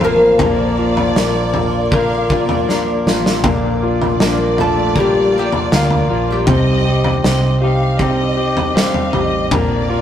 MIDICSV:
0, 0, Header, 1, 8, 480
1, 0, Start_track
1, 0, Key_signature, -2, "major"
1, 0, Tempo, 759494
1, 256, Time_signature, 4, 2, 24, 8
1, 6329, End_track
2, 0, Start_track
2, 0, Title_t, "Ambient pad"
2, 0, Program_c, 0, 92
2, 0, Note_on_c, 0, 72, 66
2, 0, Note_on_c, 0, 77, 65
2, 0, Note_on_c, 0, 81, 81
2, 0, Note_on_c, 0, 84, 84
2, 227, Note_off_c, 0, 84, 0
2, 230, Note_off_c, 0, 72, 0
2, 237, Note_off_c, 0, 81, 0
2, 254, Note_on_c, 0, 86, 84
2, 257, Note_on_c, 0, 70, 71
2, 258, Note_on_c, 0, 74, 71
2, 2153, Note_off_c, 0, 77, 0
2, 2156, Note_off_c, 0, 86, 0
2, 2157, Note_off_c, 0, 70, 0
2, 2158, Note_off_c, 0, 74, 0
2, 6329, End_track
3, 0, Start_track
3, 0, Title_t, "Violin section"
3, 0, Program_c, 1, 48
3, 0, Note_on_c, 1, 77, 113
3, 229, Note_off_c, 1, 77, 0
3, 251, Note_on_c, 1, 74, 104
3, 1213, Note_off_c, 1, 74, 0
3, 1219, Note_on_c, 1, 77, 90
3, 1457, Note_off_c, 1, 77, 0
3, 1461, Note_on_c, 1, 74, 79
3, 1938, Note_off_c, 1, 74, 0
3, 2180, Note_on_c, 1, 74, 106
3, 4073, Note_off_c, 1, 74, 0
3, 4093, Note_on_c, 1, 75, 107
3, 4549, Note_off_c, 1, 75, 0
3, 4568, Note_on_c, 1, 75, 83
3, 4795, Note_off_c, 1, 75, 0
3, 4804, Note_on_c, 1, 77, 86
3, 5033, Note_off_c, 1, 77, 0
3, 5043, Note_on_c, 1, 75, 94
3, 5527, Note_on_c, 1, 77, 90
3, 5529, Note_off_c, 1, 75, 0
3, 5761, Note_on_c, 1, 75, 93
3, 5771, Note_off_c, 1, 77, 0
3, 6004, Note_on_c, 1, 74, 118
3, 6008, Note_off_c, 1, 75, 0
3, 6329, Note_off_c, 1, 74, 0
3, 6329, End_track
4, 0, Start_track
4, 0, Title_t, "Oud"
4, 0, Program_c, 2, 24
4, 25, Note_on_c, 2, 58, 84
4, 28, Note_on_c, 2, 70, 104
4, 1675, Note_off_c, 2, 58, 0
4, 1677, Note_off_c, 2, 70, 0
4, 2663, Note_on_c, 2, 58, 76
4, 2669, Note_on_c, 2, 70, 100
4, 2883, Note_off_c, 2, 58, 0
4, 2908, Note_on_c, 2, 57, 76
4, 2909, Note_off_c, 2, 70, 0
4, 2912, Note_on_c, 2, 69, 91
4, 3125, Note_off_c, 2, 57, 0
4, 3147, Note_on_c, 2, 55, 79
4, 3151, Note_off_c, 2, 69, 0
4, 3160, Note_on_c, 2, 67, 92
4, 3365, Note_off_c, 2, 55, 0
4, 3395, Note_off_c, 2, 67, 0
4, 3399, Note_on_c, 2, 55, 73
4, 3408, Note_on_c, 2, 67, 93
4, 3460, Note_off_c, 2, 55, 0
4, 3468, Note_off_c, 2, 67, 0
4, 3630, Note_on_c, 2, 77, 71
4, 3642, Note_on_c, 2, 65, 87
4, 3958, Note_off_c, 2, 77, 0
4, 3985, Note_on_c, 2, 55, 59
4, 3993, Note_off_c, 2, 65, 0
4, 3996, Note_on_c, 2, 67, 75
4, 4435, Note_off_c, 2, 55, 0
4, 4440, Note_off_c, 2, 67, 0
4, 6329, End_track
5, 0, Start_track
5, 0, Title_t, "Clean electric guitar"
5, 0, Program_c, 3, 27
5, 26, Note_on_c, 3, 65, 49
5, 37, Note_on_c, 3, 60, 39
5, 253, Note_on_c, 3, 46, 75
5, 255, Note_on_c, 3, 50, 78
5, 258, Note_off_c, 3, 60, 0
5, 260, Note_on_c, 3, 53, 77
5, 260, Note_on_c, 3, 58, 84
5, 261, Note_off_c, 3, 65, 0
5, 263, Note_on_c, 3, 62, 76
5, 266, Note_on_c, 3, 70, 92
5, 483, Note_off_c, 3, 70, 0
5, 491, Note_on_c, 3, 70, 60
5, 492, Note_off_c, 3, 62, 0
5, 494, Note_off_c, 3, 46, 0
5, 495, Note_off_c, 3, 50, 0
5, 498, Note_off_c, 3, 53, 0
5, 498, Note_off_c, 3, 58, 0
5, 499, Note_on_c, 3, 62, 52
5, 507, Note_on_c, 3, 58, 49
5, 515, Note_on_c, 3, 53, 47
5, 1209, Note_on_c, 3, 46, 93
5, 1211, Note_on_c, 3, 50, 94
5, 1214, Note_off_c, 3, 58, 0
5, 1215, Note_off_c, 3, 53, 0
5, 1217, Note_on_c, 3, 53, 85
5, 1217, Note_on_c, 3, 58, 97
5, 1220, Note_off_c, 3, 62, 0
5, 1221, Note_off_c, 3, 70, 0
5, 1223, Note_on_c, 3, 62, 94
5, 1224, Note_on_c, 3, 70, 104
5, 1443, Note_off_c, 3, 70, 0
5, 1451, Note_on_c, 3, 70, 59
5, 1452, Note_off_c, 3, 62, 0
5, 1453, Note_off_c, 3, 46, 0
5, 1453, Note_off_c, 3, 50, 0
5, 1456, Note_off_c, 3, 58, 0
5, 1457, Note_off_c, 3, 53, 0
5, 1460, Note_on_c, 3, 62, 53
5, 1468, Note_on_c, 3, 58, 50
5, 1471, Note_on_c, 3, 53, 51
5, 1681, Note_off_c, 3, 53, 0
5, 1687, Note_off_c, 3, 58, 0
5, 1689, Note_on_c, 3, 53, 70
5, 1694, Note_off_c, 3, 70, 0
5, 1695, Note_off_c, 3, 62, 0
5, 1695, Note_on_c, 3, 58, 75
5, 1702, Note_on_c, 3, 62, 72
5, 1711, Note_on_c, 3, 70, 73
5, 2169, Note_on_c, 3, 46, 78
5, 2174, Note_off_c, 3, 58, 0
5, 2174, Note_on_c, 3, 50, 84
5, 2175, Note_off_c, 3, 53, 0
5, 2177, Note_on_c, 3, 58, 92
5, 2178, Note_on_c, 3, 53, 85
5, 2180, Note_off_c, 3, 62, 0
5, 2183, Note_on_c, 3, 62, 93
5, 2184, Note_off_c, 3, 70, 0
5, 2186, Note_on_c, 3, 70, 100
5, 2409, Note_off_c, 3, 62, 0
5, 2413, Note_off_c, 3, 46, 0
5, 2415, Note_off_c, 3, 50, 0
5, 2416, Note_off_c, 3, 58, 0
5, 2416, Note_on_c, 3, 62, 66
5, 2417, Note_off_c, 3, 53, 0
5, 2421, Note_off_c, 3, 70, 0
5, 2428, Note_on_c, 3, 53, 55
5, 3130, Note_off_c, 3, 53, 0
5, 3130, Note_on_c, 3, 46, 82
5, 3135, Note_on_c, 3, 50, 82
5, 3136, Note_off_c, 3, 62, 0
5, 3137, Note_on_c, 3, 53, 80
5, 3140, Note_on_c, 3, 58, 87
5, 3144, Note_on_c, 3, 70, 91
5, 3146, Note_on_c, 3, 62, 89
5, 3361, Note_off_c, 3, 70, 0
5, 3368, Note_off_c, 3, 62, 0
5, 3368, Note_on_c, 3, 70, 54
5, 3373, Note_off_c, 3, 46, 0
5, 3376, Note_off_c, 3, 50, 0
5, 3376, Note_off_c, 3, 58, 0
5, 3376, Note_on_c, 3, 62, 52
5, 3377, Note_off_c, 3, 53, 0
5, 3384, Note_on_c, 3, 58, 43
5, 3392, Note_on_c, 3, 53, 48
5, 3605, Note_off_c, 3, 53, 0
5, 3610, Note_off_c, 3, 58, 0
5, 3612, Note_off_c, 3, 70, 0
5, 3613, Note_on_c, 3, 53, 60
5, 3616, Note_off_c, 3, 62, 0
5, 3617, Note_on_c, 3, 58, 65
5, 3625, Note_on_c, 3, 62, 64
5, 3632, Note_on_c, 3, 70, 71
5, 3844, Note_off_c, 3, 70, 0
5, 3852, Note_on_c, 3, 70, 52
5, 3854, Note_off_c, 3, 53, 0
5, 3855, Note_off_c, 3, 62, 0
5, 3857, Note_off_c, 3, 58, 0
5, 3863, Note_on_c, 3, 62, 53
5, 3867, Note_on_c, 3, 58, 45
5, 3875, Note_on_c, 3, 53, 37
5, 4094, Note_off_c, 3, 70, 0
5, 4094, Note_on_c, 3, 48, 82
5, 4096, Note_off_c, 3, 53, 0
5, 4099, Note_off_c, 3, 58, 0
5, 4099, Note_off_c, 3, 62, 0
5, 4099, Note_on_c, 3, 55, 88
5, 4101, Note_on_c, 3, 60, 84
5, 4106, Note_on_c, 3, 63, 87
5, 4106, Note_on_c, 3, 67, 86
5, 4324, Note_off_c, 3, 67, 0
5, 4331, Note_on_c, 3, 67, 54
5, 4335, Note_off_c, 3, 48, 0
5, 4336, Note_off_c, 3, 63, 0
5, 4337, Note_off_c, 3, 55, 0
5, 4339, Note_off_c, 3, 60, 0
5, 4343, Note_on_c, 3, 63, 50
5, 4352, Note_on_c, 3, 60, 45
5, 4805, Note_off_c, 3, 67, 0
5, 4813, Note_on_c, 3, 67, 47
5, 4818, Note_off_c, 3, 63, 0
5, 4825, Note_on_c, 3, 63, 54
5, 4831, Note_off_c, 3, 60, 0
5, 4833, Note_on_c, 3, 60, 53
5, 5051, Note_on_c, 3, 48, 107
5, 5054, Note_off_c, 3, 60, 0
5, 5054, Note_off_c, 3, 67, 0
5, 5057, Note_off_c, 3, 63, 0
5, 5057, Note_on_c, 3, 55, 93
5, 5062, Note_on_c, 3, 60, 96
5, 5065, Note_on_c, 3, 63, 95
5, 5068, Note_on_c, 3, 67, 103
5, 5285, Note_off_c, 3, 67, 0
5, 5292, Note_on_c, 3, 67, 59
5, 5293, Note_off_c, 3, 48, 0
5, 5297, Note_off_c, 3, 55, 0
5, 5298, Note_off_c, 3, 63, 0
5, 5299, Note_off_c, 3, 60, 0
5, 5305, Note_on_c, 3, 63, 54
5, 5311, Note_on_c, 3, 60, 53
5, 5534, Note_off_c, 3, 67, 0
5, 5534, Note_on_c, 3, 55, 71
5, 5536, Note_off_c, 3, 60, 0
5, 5541, Note_off_c, 3, 63, 0
5, 5544, Note_on_c, 3, 60, 77
5, 5549, Note_on_c, 3, 63, 74
5, 5557, Note_on_c, 3, 67, 83
5, 6015, Note_off_c, 3, 55, 0
5, 6016, Note_on_c, 3, 46, 88
5, 6019, Note_on_c, 3, 50, 91
5, 6022, Note_off_c, 3, 63, 0
5, 6023, Note_on_c, 3, 53, 88
5, 6025, Note_off_c, 3, 60, 0
5, 6026, Note_off_c, 3, 67, 0
5, 6027, Note_on_c, 3, 62, 99
5, 6028, Note_on_c, 3, 60, 92
5, 6032, Note_on_c, 3, 70, 101
5, 6245, Note_off_c, 3, 70, 0
5, 6253, Note_on_c, 3, 70, 65
5, 6254, Note_off_c, 3, 62, 0
5, 6256, Note_off_c, 3, 46, 0
5, 6257, Note_off_c, 3, 50, 0
5, 6259, Note_off_c, 3, 60, 0
5, 6260, Note_off_c, 3, 53, 0
5, 6262, Note_on_c, 3, 62, 62
5, 6267, Note_on_c, 3, 60, 55
5, 6274, Note_on_c, 3, 53, 50
5, 6329, Note_off_c, 3, 53, 0
5, 6329, Note_off_c, 3, 60, 0
5, 6329, Note_off_c, 3, 62, 0
5, 6329, Note_off_c, 3, 70, 0
5, 6329, End_track
6, 0, Start_track
6, 0, Title_t, "Grand piano"
6, 0, Program_c, 4, 0
6, 0, Control_c, 4, 64, 127
6, 0, Note_on_c, 4, 53, 59
6, 21, Note_off_c, 4, 53, 0
6, 21, Note_on_c, 4, 53, 53
6, 251, Note_off_c, 4, 53, 0
6, 260, Note_on_c, 4, 58, 75
6, 265, Control_c, 4, 64, 0
6, 389, Control_c, 4, 64, 127
6, 496, Note_on_c, 4, 65, 55
6, 722, Note_off_c, 4, 58, 0
6, 732, Note_on_c, 4, 58, 56
6, 969, Note_off_c, 4, 65, 0
6, 978, Note_on_c, 4, 65, 56
6, 1209, Note_off_c, 4, 58, 0
6, 1219, Note_on_c, 4, 58, 64
6, 1448, Note_off_c, 4, 65, 0
6, 1458, Note_on_c, 4, 65, 58
6, 1697, Note_off_c, 4, 58, 0
6, 1707, Note_on_c, 4, 58, 56
6, 1933, Note_off_c, 4, 65, 0
6, 1942, Note_on_c, 4, 65, 52
6, 2167, Note_off_c, 4, 58, 0
6, 2172, Note_off_c, 4, 65, 0
6, 2182, Note_on_c, 4, 46, 70
6, 2185, Control_c, 4, 64, 0
6, 2276, Control_c, 4, 64, 127
6, 2419, Note_on_c, 4, 65, 56
6, 2657, Note_on_c, 4, 62, 60
6, 2878, Note_off_c, 4, 65, 0
6, 2887, Note_on_c, 4, 65, 56
6, 3125, Note_on_c, 4, 58, 59
6, 3360, Note_off_c, 4, 65, 0
6, 3369, Note_on_c, 4, 65, 59
6, 3591, Note_off_c, 4, 62, 0
6, 3607, Note_off_c, 4, 58, 0
6, 3617, Note_on_c, 4, 58, 57
6, 3846, Note_off_c, 4, 65, 0
6, 3856, Note_on_c, 4, 65, 56
6, 4074, Note_off_c, 4, 46, 0
6, 4082, Note_off_c, 4, 58, 0
6, 4089, Note_off_c, 4, 65, 0
6, 4093, Note_on_c, 4, 60, 72
6, 4104, Control_c, 4, 64, 0
6, 4204, Control_c, 4, 64, 127
6, 4330, Note_on_c, 4, 67, 54
6, 4568, Note_off_c, 4, 60, 0
6, 4577, Note_on_c, 4, 60, 55
6, 4801, Note_off_c, 4, 67, 0
6, 4811, Note_on_c, 4, 67, 57
6, 5041, Note_off_c, 4, 60, 0
6, 5050, Note_on_c, 4, 60, 60
6, 5278, Note_off_c, 4, 67, 0
6, 5288, Note_on_c, 4, 67, 65
6, 5520, Note_off_c, 4, 60, 0
6, 5529, Note_on_c, 4, 60, 60
6, 5766, Note_off_c, 4, 67, 0
6, 5775, Note_on_c, 4, 67, 57
6, 5998, Note_off_c, 4, 60, 0
6, 6008, Note_off_c, 4, 67, 0
6, 6017, Note_on_c, 4, 58, 69
6, 6024, Control_c, 4, 64, 0
6, 6144, Control_c, 4, 64, 127
6, 6254, Note_on_c, 4, 65, 57
6, 6329, Note_off_c, 4, 58, 0
6, 6329, Note_off_c, 4, 65, 0
6, 6329, End_track
7, 0, Start_track
7, 0, Title_t, "Fingered electric bass"
7, 0, Program_c, 5, 33
7, 14, Note_on_c, 5, 33, 97
7, 238, Note_off_c, 5, 33, 0
7, 252, Note_on_c, 5, 34, 89
7, 709, Note_off_c, 5, 34, 0
7, 739, Note_on_c, 5, 34, 108
7, 1912, Note_off_c, 5, 34, 0
7, 1937, Note_on_c, 5, 33, 82
7, 2159, Note_off_c, 5, 33, 0
7, 2178, Note_on_c, 5, 34, 92
7, 2632, Note_off_c, 5, 34, 0
7, 2661, Note_on_c, 5, 34, 101
7, 3593, Note_off_c, 5, 34, 0
7, 3615, Note_on_c, 5, 38, 87
7, 3839, Note_off_c, 5, 38, 0
7, 3855, Note_on_c, 5, 34, 95
7, 4079, Note_off_c, 5, 34, 0
7, 4092, Note_on_c, 5, 36, 94
7, 4549, Note_off_c, 5, 36, 0
7, 4574, Note_on_c, 5, 36, 101
7, 5749, Note_off_c, 5, 36, 0
7, 5776, Note_on_c, 5, 33, 99
7, 5999, Note_off_c, 5, 33, 0
7, 6013, Note_on_c, 5, 34, 96
7, 6329, Note_off_c, 5, 34, 0
7, 6329, End_track
8, 0, Start_track
8, 0, Title_t, "Drums"
8, 6, Note_on_c, 9, 43, 64
8, 70, Note_off_c, 9, 43, 0
8, 247, Note_on_c, 9, 43, 105
8, 252, Note_on_c, 9, 36, 105
8, 311, Note_off_c, 9, 43, 0
8, 316, Note_off_c, 9, 36, 0
8, 613, Note_on_c, 9, 43, 67
8, 677, Note_off_c, 9, 43, 0
8, 735, Note_on_c, 9, 38, 112
8, 798, Note_off_c, 9, 38, 0
8, 971, Note_on_c, 9, 43, 65
8, 1035, Note_off_c, 9, 43, 0
8, 1212, Note_on_c, 9, 36, 101
8, 1276, Note_off_c, 9, 36, 0
8, 1454, Note_on_c, 9, 36, 94
8, 1517, Note_off_c, 9, 36, 0
8, 1573, Note_on_c, 9, 43, 67
8, 1636, Note_off_c, 9, 43, 0
8, 1700, Note_on_c, 9, 38, 56
8, 1763, Note_off_c, 9, 38, 0
8, 1941, Note_on_c, 9, 38, 92
8, 2004, Note_off_c, 9, 38, 0
8, 2062, Note_on_c, 9, 38, 96
8, 2125, Note_off_c, 9, 38, 0
8, 2173, Note_on_c, 9, 43, 101
8, 2174, Note_on_c, 9, 36, 116
8, 2236, Note_off_c, 9, 43, 0
8, 2238, Note_off_c, 9, 36, 0
8, 2537, Note_on_c, 9, 43, 62
8, 2601, Note_off_c, 9, 43, 0
8, 2656, Note_on_c, 9, 38, 113
8, 2720, Note_off_c, 9, 38, 0
8, 2896, Note_on_c, 9, 43, 62
8, 2959, Note_off_c, 9, 43, 0
8, 3133, Note_on_c, 9, 36, 97
8, 3196, Note_off_c, 9, 36, 0
8, 3492, Note_on_c, 9, 43, 64
8, 3555, Note_off_c, 9, 43, 0
8, 3616, Note_on_c, 9, 38, 108
8, 3680, Note_off_c, 9, 38, 0
8, 3733, Note_on_c, 9, 43, 63
8, 3796, Note_off_c, 9, 43, 0
8, 4089, Note_on_c, 9, 43, 107
8, 4093, Note_on_c, 9, 36, 99
8, 4152, Note_off_c, 9, 43, 0
8, 4157, Note_off_c, 9, 36, 0
8, 4452, Note_on_c, 9, 43, 67
8, 4515, Note_off_c, 9, 43, 0
8, 4578, Note_on_c, 9, 38, 107
8, 4642, Note_off_c, 9, 38, 0
8, 5051, Note_on_c, 9, 36, 97
8, 5115, Note_off_c, 9, 36, 0
8, 5415, Note_on_c, 9, 43, 61
8, 5478, Note_off_c, 9, 43, 0
8, 5542, Note_on_c, 9, 38, 110
8, 5606, Note_off_c, 9, 38, 0
8, 5652, Note_on_c, 9, 43, 64
8, 5716, Note_off_c, 9, 43, 0
8, 5771, Note_on_c, 9, 43, 60
8, 5834, Note_off_c, 9, 43, 0
8, 6013, Note_on_c, 9, 43, 111
8, 6015, Note_on_c, 9, 36, 103
8, 6076, Note_off_c, 9, 43, 0
8, 6078, Note_off_c, 9, 36, 0
8, 6329, End_track
0, 0, End_of_file